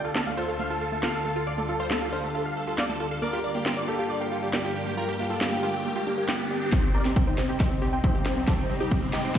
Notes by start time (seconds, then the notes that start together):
Already playing: D2 D3 A3 F4 D5
0.05 F4 A4
0.15 A4 F5, snare
0.26 A3 F5
0.37 F4 A4 C5
0.48 A4 F5
0.59 A3 F5
0.70 F4 A4
0.81 A4 F5
0.92 A3 A4
1.03 F4 A4 F5, snare
1.14 A4 F5
1.25 A3 A4
1.36 F4 A4
1.47 G3 D5 F5
1.58 A3 A4
1.69 F4 A4
1.80 C5 F5
1.91 A3 A4, snare
2.02 F4 A4
2.13 C5 F5
2.24 A3 A4
2.34 F4 A4
2.45 F5
2.56 A3 A4
2.67 F4 A4
2.78 D5 F5, snare
2.89 A3 A4
3.00 F4 A4
3.11 A4 F5
3.22 G2 A#3 F4 A#4 D5, riser
3.33 F4 G4
3.44 D5
3.55 A#3 G4
3.66 F4 G4, snare
3.77 D5
3.88 A#3 G4 A4
3.99 F4 G4
4.10 D5
4.21 A#3 G4
4.32 F4 G4
4.42 G4 D5
4.53 A#3 G4 D5, snare
4.64 F4 G4
4.75 G4 D5
4.86 A#3 G4
4.97 F4 G4 A#4
5.08 G4 D5
5.19 A#3 F4 G4
5.30 F4 A4
5.41 G4 D5, snare
5.52 A#3 G4
5.63 F4 G4
5.74 G4 D5
5.85 A#3 G4
5.96 F4 G4
6.07 D4 G4
6.18 A#3 G4
6.29 F4 G4, snare
6.40 G4
6.50 D4 G4
6.61 G4
6.72 C2 C3 G3 C4 D#4 C5, kick, snare, closed hi-hat, riser
6.83 C4 G4, closed hi-hat
6.94 A#4 D5 G5, open hi-hat
7.05 C4, snare, closed hi-hat
7.16 C4 G4, kick, closed hi-hat
7.27 D#4 C5 G5, closed hi-hat
7.38 C4, snare, open hi-hat
7.49 C4 G4, closed hi-hat
7.60 D#4 C5 G5, kick, snare, closed hi-hat
7.71 C4, closed hi-hat
7.82 C4 G4, open hi-hat
7.93 C4 G5, closed hi-hat
8.04 C4 D#4 C5, kick, closed hi-hat
8.15 C4 G4, closed hi-hat
8.26 C4 G5, snare, open hi-hat, percussion blips
8.37 C4, closed hi-hat
8.48 C4 G4 A4, kick, snare, closed hi-hat
8.58 C4 G5, closed hi-hat
8.69 C4, open hi-hat
8.80 D#4 G4, closed hi-hat
8.91 C4 G5, kick, closed hi-hat
9.02 C4, closed hi-hat
9.13 D#4 G4, snare, open hi-hat
9.24 C4 G5, closed hi-hat
9.35 C4, kick, snare, closed hi-hat